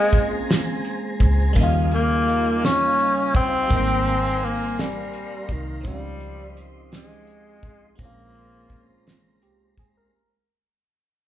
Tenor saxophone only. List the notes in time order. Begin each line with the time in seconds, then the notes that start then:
Already playing: G#3
1.94 A#3
2.65 C#4
3.36 C4
4.44 A#3
4.80 G3
5.52 D#3
5.87 G3
6.96 G#3
8.03 A#3